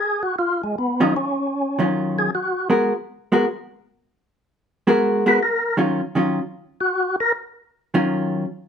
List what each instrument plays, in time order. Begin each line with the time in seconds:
0.00 tonewheel organ G#4
0.23 tonewheel organ F#4
0.39 tonewheel organ F4
0.63 tonewheel organ G#3
0.78 tonewheel organ B3
1.00 hollow-body jazz guitar D#3 F#3 C#4 F4, tonewheel organ D#4
1.16 tonewheel organ C#4
1.79 hollow-body jazz guitar D#3 F#3 C#4 F4
2.19 tonewheel organ G#4
2.35 tonewheel organ F#4
2.70 hollow-body jazz guitar G#3 B3 F#4 A#4
3.32 hollow-body jazz guitar G#3 B3 F#4 A#4
4.87 hollow-body jazz guitar G#3 B3 F#4 A#4
5.26 hollow-body jazz guitar G#3 B3 F#4 A#4, tonewheel organ B4
5.43 tonewheel organ A#4
5.77 hollow-body jazz guitar D#3 F#3 C#4 F4
6.15 hollow-body jazz guitar D#3 F#3 C#4 F4
6.80 tonewheel organ F#4
7.20 tonewheel organ A#4
7.94 hollow-body jazz guitar D#3 F#3 C#4 F4